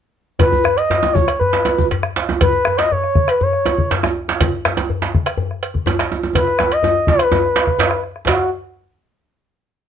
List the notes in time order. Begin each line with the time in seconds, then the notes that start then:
0.39 B4, bombo low, cowbell, djembe tone, djembe bass
0.52 djembe bass
0.64 bombo rim, djembe slap, djembe tone
0.76 D#5, cowbell
0.90 djembe slap, djembe bass
1.03 bombo rim, djembe tone
1.13 C#5, bombo rim, bombo low, djembe bass
1.28 bombo rim, cowbell, djembe slap
1.40 B4, djembe slap, djembe tone, djembe bass
1.53 bombo rim, djembe slap
1.65 bombo rim, cowbell, djembe tone
1.78 bombo low, djembe slap, djembe tone, djembe bass
1.91 cowbell, djembe slap, djembe bass
2.03 bombo rim
2.16 djembe slap
2.29 djembe tone
2.41 B4, bombo low, cowbell, djembe bass
2.65 bombo rim, djembe slap, djembe tone
2.77 D#5, cowbell, djembe slap
2.91 C#5, djembe bass
3.04 bombo rim
3.15 bombo rim, bombo low
3.28 B4, bombo rim, cowbell, djembe slap
3.41 C#5, djembe slap, djembe tone, djembe bass
3.53 bombo rim
3.66 bombo rim, cowbell, djembe tone
3.78 bombo low, djembe slap, djembe tone
3.91 cowbell, djembe slap, djembe bass
4.03 bombo rim, djembe tone
4.28 djembe slap, djembe tone
4.40 bombo low, cowbell, djembe tone, djembe bass
4.65 bombo rim, djembe slap, djembe tone
4.77 cowbell, djembe tone
4.90 djembe bass
5.02 bombo rim, djembe slap, djembe tone
5.14 bombo rim, bombo low
5.26 bombo rim, cowbell, djembe slap
5.38 djembe slap, djembe tone, djembe bass
5.51 bombo rim
5.63 bombo rim, cowbell
5.74 bombo low, djembe slap, djembe tone
5.86 cowbell, djembe slap, djembe tone, djembe bass
5.99 bombo rim, djembe slap
6.12 djembe tone
6.23 djembe tone
6.35 B4, bombo rim, bombo low, cowbell, djembe tone, djembe bass
6.47 bombo rim
6.59 bombo rim, djembe slap, djembe tone
6.72 D#5, cowbell
6.83 bombo rim, djembe tone, djembe bass
6.95 djembe tone
7.07 B4, bombo low, djembe tone
7.19 bombo rim, cowbell, djembe slap
7.32 djembe tone, djembe bass
7.44 bombo rim
7.56 cowbell, djembe slap
7.67 bombo rim, bombo low, djembe tone
7.79 cowbell, djembe slap, djembe bass
7.91 bombo rim
8.02 bombo rim, djembe slap
8.16 bombo rim
8.26 F#4, bombo low, cowbell, djembe slap, djembe bass